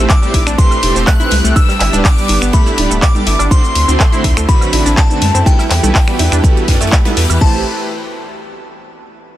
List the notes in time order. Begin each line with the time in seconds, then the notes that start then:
Already playing: A3 C4 G4
0.09 D6, kick, snare, clap, ride, shaker
0.22 A2 G3 A3 C4 E4 G4 C5, ride, shaker
0.34 A1 E4 E5, kick, open hi-hat, ride, high conga
0.47 A1 D4 D5, finger snap, shaker
0.58 A2 A3 C4 E4 G4 B4 C6, kick, ride, shaker
0.71 high woodblock, shaker
0.83 E1 A2 A3 C4 E4 G4 D5, open hi-hat, ride, high conga
0.96 E1 C4 C5, snare, shaker
1.07 A3 A4 F#6, kick, snare, clap, ride, shaker
1.20 A2 A3 C4 E4 G4 B4 E5, high conga, shaker
1.31 C2, open hi-hat, ride, low conga
1.44 C2 A3 A4, shaker
1.56 G3 B3 D4 G4 B4 E6, kick, ride, high conga, shaker
1.69 G3 G4, snare, high woodblock, shaker
1.80 G1 E4 E5, clap, open hi-hat, ride
1.93 D1 G3 D4 G4 B4 D5, ride, high conga, low conga, shaker
2.05 D6, kick, snare, clap, open hi-hat, shaker
2.18 G3 D4 G4 B4, shaker
2.28 G1, open hi-hat, ride, high conga
2.42 G1 B3 B4, finger snap, shaker
2.53 G3 A3 D4 G4 A4 B5, kick, ride, shaker
2.66 E4 E5, ride, shaker
2.78 D1 G3 D4 G4 D5, open hi-hat, ride, high conga
2.91 D1 A3 A4, shaker
3.02 D6, kick, snare, clap, ride, shaker
3.15 G3 D4 G4 A4, ride, high conga, low conga, shaker
3.27 G1 E4 E5, open hi-hat, ride
3.39 G1 D4 D5, high woodblock, shaker
3.51 D3 A3 C4 D4 E4 F#4 C5 C6, kick, ride, high conga, shaker
3.64 shaker
3.75 D2, open hi-hat, ride
3.88 D2 D3 A3 C4 D4 F#4 C5, high conga, shaker
4.00 A3 A4, kick, snare, clap, ride, shaker
4.12 D3 A3 C4 D4 E4 F#4 C5 E5, ride, shaker
4.24 D2, kick, open hi-hat, ride, high conga
4.37 D2 A3 A4, finger snap, shaker
4.49 D3 A3 C4 D4 F#4 B4 B5, kick, ride, shaker
4.61 F#3 F#4, high woodblock, shaker
4.73 A1 D3 A3 C4 D4 E4 F#4 D5 E5, open hi-hat, ride, high conga
4.86 A1 D4 D5, snare, shaker
4.97 A5, kick, snare, clap, ride, shaker
5.10 D3 A3 C4 D4 F#4 B4, high conga, shaker
5.21 F#2, open hi-hat, ride, low conga
5.34 F#2 C4 C5, shaker
5.46 E3 G3 A3 B3 E4 F#4 G4 A4 B4 G5, kick, ride, high conga, shaker
5.59 E4 E5, snare, high woodblock, shaker
5.70 E2, snare, clap, open hi-hat, ride
5.83 B1 G3 A3 B3 E4 F#4 A4 B4, ride, high conga, low conga, shaker
5.95 kick, snare, clap, open hi-hat, shaker
6.08 G3 B3 E4 F#4 G4 B4, finger snap, shaker
6.19 E2 E4 E5, open hi-hat, ride, high conga
6.32 E2 D4 D5, finger snap, shaker
6.44 G3 B3 E4 F#4 A4, kick, ride, shaker
6.57 ride, shaker
6.68 F#2 G3 B3 E4 F#4 D5, kick, snare, open hi-hat, ride, high conga
6.74 snare, ride
6.80 F#2 A3 A4, snare, ride, shaker
6.87 snare, ride
6.92 E4 E5, kick, snare, clap, ride, shaker
7.05 G3 B3 E4 F#4 A4 B4, snare, ride, high conga, low conga, shaker
7.17 E2, snare, open hi-hat
7.30 E2 E3 E4, high woodblock, shaker
7.41 A1 A3 C4 E4 G4 B4 C5 A5, kick, crash